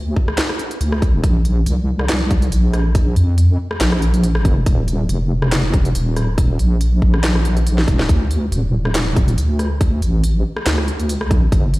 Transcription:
0.00 0.15 D2 loud
0.16 kick medium
0.28 cross-stick medium
0.38 snare loud
0.38 clap loud
0.38 closed hi-hat medium
0.49 cross-stick medium
0.59 closed hi-hat soft
0.71 closed hi-hat soft
0.81 1.22 D2 loud
0.81 closed hi-hat medium
0.92 cross-stick medium
1.02 kick loud
1.02 closed hi-hat medium
1.24 1.65 A#1 medium
1.24 kick loud
1.24 closed hi-hat medium
1.45 closed hi-hat soft
1.66 2.51 C2 loud
1.66 closed hi-hat medium
1.99 cross-stick medium
2.09 snare loud
2.09 clap medium
2.09 closed hi-hat medium
2.31 kick loud
2.31 closed hi-hat medium
2.42 closed hi-hat soft
2.52 3.15 A#1 loud
2.52 closed hi-hat medium
2.74 cross-stick medium
2.74 closed hi-hat soft
2.95 kick loud
2.95 closed hi-hat medium
3.16 3.58 F2 loud
3.16 closed hi-hat medium
3.38 closed hi-hat medium
3.71 cross-stick medium
3.81 4.65 A#1 loud
3.81 snare loud
3.81 clap medium
3.81 closed hi-hat medium
3.92 cross-stick medium
4.02 closed hi-hat medium
4.14 closed hi-hat soft
4.24 closed hi-hat medium
4.35 cross-stick medium
4.45 kick loud
4.45 closed hi-hat medium
4.66 5.08 D#1 loud
4.66 kick loud
4.66 closed hi-hat medium
4.88 closed hi-hat medium
5.09 5.93 F1 loud
5.09 closed hi-hat medium
5.42 cross-stick medium
5.52 snare loud
5.52 clap loud
5.52 closed hi-hat medium
5.74 kick loud
5.74 closed hi-hat medium
5.85 closed hi-hat soft
5.95 6.58 D#1 loud
5.95 closed hi-hat medium
6.17 cross-stick medium
6.17 closed hi-hat medium
6.38 kick loud
6.38 closed hi-hat medium
6.59 7.01 A#1 medium
6.59 closed hi-hat medium
6.81 closed hi-hat medium
7.02 7.86 A#1 loud
7.02 kick medium
7.14 cross-stick medium
7.24 snare loud
7.24 clap loud
7.24 closed hi-hat medium
7.35 cross-stick medium
7.45 closed hi-hat medium
7.57 closed hi-hat soft
7.67 closed hi-hat medium
7.78 snare medium
7.88 8.08 D#1 loud
7.88 kick loud
7.88 closed hi-hat medium
7.99 snare loud
8.09 8.51 D2 loud
8.09 kick loud
8.09 closed hi-hat medium
8.31 closed hi-hat medium
8.52 9.36 D#1 loud
8.52 closed hi-hat medium
8.85 cross-stick medium
8.95 snare loud
8.95 clap loud
8.95 closed hi-hat medium
9.16 kick loud
9.16 closed hi-hat medium
9.28 closed hi-hat soft
9.38 10.01 D2 loud
9.38 closed hi-hat medium
9.59 cross-stick medium
9.59 closed hi-hat medium
9.81 kick loud
9.81 closed hi-hat medium
10.02 10.43 A1 loud
10.02 closed hi-hat medium
10.24 closed hi-hat medium
10.57 cross-stick medium
10.66 11.51 D2 medium
10.66 snare loud
10.66 clap loud
10.66 closed hi-hat medium
10.78 cross-stick medium
10.88 closed hi-hat medium
11.00 closed hi-hat soft
11.09 closed hi-hat medium
11.21 cross-stick medium
11.31 kick loud
11.31 closed hi-hat medium
11.52 11.79 G1 medium
11.52 kick loud
11.52 closed hi-hat medium
11.74 closed hi-hat medium

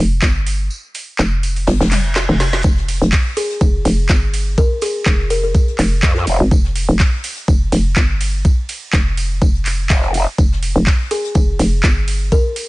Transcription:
0.00 0.21 F1 loud
0.22 0.69 G1 medium
0.22 kick loud
0.22 snare loud
0.22 clap loud
0.22 tambourine loud
0.46 open hi-hat loud
0.46 tambourine medium
0.70 tambourine medium
0.94 open hi-hat loud
0.94 tambourine medium
1.19 1.66 F1 loud
1.19 snare loud
1.19 clap loud
1.19 tambourine medium
1.43 open hi-hat loud
1.43 tambourine medium
1.56 open hi-hat medium
1.67 1.78 G1 loud
1.67 snare loud
1.67 open hi-hat medium
1.67 reverse cymbal medium
1.81 2.27 F1 loud
1.81 snare loud
1.81 open hi-hat medium
1.91 snare loud
1.91 clap medium
1.91 open hi-hat medium
1.91 open hi-hat loud
1.91 high tom medium
2.15 snare loud
2.15 snare medium
2.15 clap loud
2.15 tambourine medium
2.29 2.62 F1 loud
2.29 snare medium
2.29 mid tom medium
2.40 snare loud
2.40 open hi-hat loud
2.40 tambourine medium
2.53 snare soft
2.53 snare medium
2.64 2.99 F1 loud
2.64 kick loud
2.64 ride medium
2.64 tambourine medium
2.77 snare soft
2.88 open hi-hat loud
2.88 ride medium
2.88 tambourine medium
3.02 3.11 F1 medium
3.02 closed hi-hat soft
3.12 kick loud
3.12 snare loud
3.12 clap loud
3.12 open hi-hat medium
3.12 ride medium
3.37 4.05 G#4 medium
3.37 open hi-hat loud
3.37 ride medium
3.37 tambourine medium
3.50 closed hi-hat soft
3.61 3.83 F1 loud
3.61 kick loud
3.61 ride medium
3.61 tambourine loud
3.85 4.08 F1 loud
3.85 snare soft
3.85 open hi-hat loud
3.85 ride medium
3.85 tambourine medium
4.09 4.56 G1 medium
4.09 kick loud
4.09 snare loud
4.09 clap loud
4.09 ride medium
4.09 tambourine medium
4.33 open hi-hat loud
4.33 ride medium
4.33 tambourine medium
4.58 4.72 A#4 medium
4.58 kick loud
4.58 ride medium
4.58 tambourine medium
4.81 4.96 G#4 medium
4.81 open hi-hat loud
4.81 ride medium
4.81 tambourine medium
5.06 5.53 F1 loud
5.06 kick loud
5.06 snare loud
5.06 clap loud
5.06 ride medium
5.06 tambourine medium
5.30 5.39 A#4 medium
5.30 open hi-hat loud
5.30 ride medium
5.30 tambourine medium
5.43 5.51 A#4 medium
5.55 kick loud
5.55 ride medium
5.55 tambourine medium
5.68 closed hi-hat soft
5.79 6.01 F1 loud
5.79 clap medium
5.79 open hi-hat loud
5.79 ride medium
5.79 tambourine medium
6.03 6.25 F2 loud
6.03 kick loud
6.03 snare loud
6.03 clap loud
6.03 ride medium
6.03 tambourine medium
6.15 snare medium
6.27 6.38 F1 loud
6.27 open hi-hat loud
6.27 ride medium
6.27 tambourine medium
6.40 6.50 G#1 loud
6.51 6.87 F1 loud
6.51 kick loud
6.51 ride medium
6.51 tambourine medium
6.65 snare soft
6.76 open hi-hat loud
6.76 ride medium
6.76 tambourine medium
6.88 6.98 F1 loud
6.88 closed hi-hat soft
6.99 kick loud
6.99 snare loud
6.99 clap loud
6.99 open hi-hat medium
6.99 ride medium
7.24 open hi-hat loud
7.24 ride medium
7.24 tambourine medium
7.36 closed hi-hat soft
7.48 7.71 F1 medium
7.48 kick loud
7.48 ride medium
7.48 tambourine medium
7.72 7.95 F1 loud
7.72 snare soft
7.72 open hi-hat loud
7.72 ride medium
7.72 tambourine medium
7.96 8.43 G1 loud
7.96 kick loud
7.96 snare loud
7.96 clap loud
7.96 ride medium
7.96 tambourine medium
8.21 open hi-hat loud
8.21 ride medium
8.21 tambourine medium
8.45 kick loud
8.45 ride medium
8.45 tambourine loud
8.69 open hi-hat loud
8.69 ride medium
8.69 tambourine medium
8.93 9.40 F1 loud
8.93 kick loud
8.93 snare loud
8.93 clap loud
8.93 ride medium
8.93 tambourine medium
9.17 open hi-hat loud
9.17 ride medium
9.17 tambourine medium
9.41 9.88 F1 loud
9.41 kick loud
9.41 ride medium
9.41 tambourine medium
9.55 closed hi-hat soft
9.65 clap medium
9.65 open hi-hat loud
9.65 ride medium
9.65 tambourine medium
9.90 10.25 F1 loud
9.90 kick loud
9.90 snare loud
9.90 clap loud
9.90 ride medium
9.90 tambourine medium
10.02 snare medium
10.14 open hi-hat loud
10.14 ride medium
10.14 tambourine medium
10.38 10.74 F1 medium
10.38 kick loud
10.38 ride medium
10.38 tambourine medium
10.52 snare soft
10.63 open hi-hat loud
10.63 ride medium
10.63 tambourine medium
10.76 10.85 F1 medium
10.76 closed hi-hat soft
10.87 kick loud
10.87 snare loud
10.87 clap loud
10.87 open hi-hat medium
10.87 ride medium
11.11 11.79 G#4 medium
11.11 open hi-hat loud
11.11 ride medium
11.11 tambourine medium
11.24 closed hi-hat soft
11.35 11.58 F1 loud
11.35 kick loud
11.35 ride medium
11.35 tambourine medium
11.59 11.82 F1 loud
11.59 snare soft
11.59 open hi-hat loud
11.59 ride medium
11.59 tambourine medium
11.83 12.30 G1 loud
11.83 kick loud
11.83 snare loud
11.83 clap loud
11.83 ride medium
11.83 tambourine loud
12.08 open hi-hat loud
12.08 ride medium
12.08 tambourine medium
12.32 12.46 A#4 medium
12.32 kick loud
12.32 ride medium
12.32 tambourine medium
12.56 open hi-hat loud
12.56 ride medium
12.56 tambourine medium

